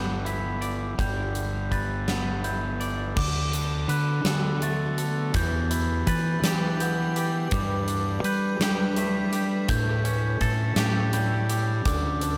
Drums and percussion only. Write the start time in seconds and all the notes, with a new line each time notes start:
0.26 closed hi-hat
0.62 closed hi-hat
0.99 kick, closed hi-hat
1.35 closed hi-hat
1.72 kick, closed hi-hat
2.08 snare, closed hi-hat
2.44 closed hi-hat
2.81 closed hi-hat
3.17 kick, crash
3.53 closed hi-hat
3.89 closed hi-hat
4.25 snare, closed hi-hat
4.62 closed hi-hat
4.98 closed hi-hat
5.34 kick, closed hi-hat
5.71 closed hi-hat
6.07 kick, closed hi-hat
6.44 snare, closed hi-hat
6.80 closed hi-hat
7.16 closed hi-hat
7.51 kick, closed hi-hat
7.88 closed hi-hat
8.24 closed hi-hat
8.61 snare, closed hi-hat
8.96 closed hi-hat
9.33 closed hi-hat
9.69 kick, closed hi-hat
10.05 closed hi-hat
10.41 kick, closed hi-hat
10.76 snare, closed hi-hat
11.13 closed hi-hat
11.50 closed hi-hat
11.85 kick, closed hi-hat
12.21 closed hi-hat